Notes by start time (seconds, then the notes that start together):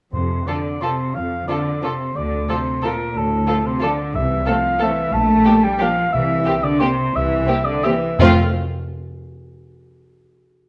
0.13 F2 C3 C5
0.47 D3 F3 F4 A4 D5
0.82 C3 F3 F4 A4 C5
1.14 F2 F3 F5
1.47 D3 F3 F4 A4 D5
1.82 C3 F3 F4 A4 C5
2.15 D2 D3 D5
2.48 C3 F3 F4 A4 C5
2.82 A#2 F3 F4 A4 A#4
3.16 D2 A2 A4
3.47 F3 F4 A4
3.65 C3 C5
3.80 D3 F3 F4 A4 D5
4.14 C2 C3 E3 E5
4.45 F3 A3 C4 A4 F5
4.79 E3 A3 C4 A4 E5
5.13 A#1 A3 A5
5.45 A#3 D4 G4
5.63 G3 G5
5.79 F3 A#3 D4 G4 F5
6.13 C2 E3 E5
6.46 A#3 C4 G4
6.63 D3 D5
6.80 C3 A#3 C4 G4 C5
7.14 C2 E3 E5
7.47 A#3 C4 G4
7.65 D3 D5
7.83 E3 A#3 C4 G4 E5
8.19 F2 F3 A3 C4 F4 F5